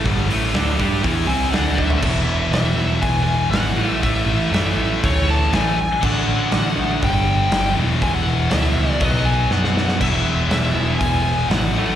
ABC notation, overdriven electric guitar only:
X:1
M:4/4
L:1/8
Q:1/4=120
K:A
V:1 name="Overdriven electric guitar" clef=bass
[=G,,D,=G,] [A,,E,A,] [D,A,D] [G,D=G] [E,B,E] [=C,G,=C] [D,A,D]2 | [E,,B,,E,]3 [E,,B,,E,]3 [E,,B,,E,] [A,,E,A,]- | [A,,E,A,]2 [A,,E,A,]3 [A,,E,A,]2 z | [D,A,D]3 [D,A,D] [=G,,D,=G,]3 [E,,B,,E,]- |
[E,,B,,E,]2 [E,,B,,E,]2 [B,,F,B,]3 [B,,F,B,] | [E,,B,,E,]3 [E,,B,,E,]3 [E,,B,,E,] [A,,E,A,] |]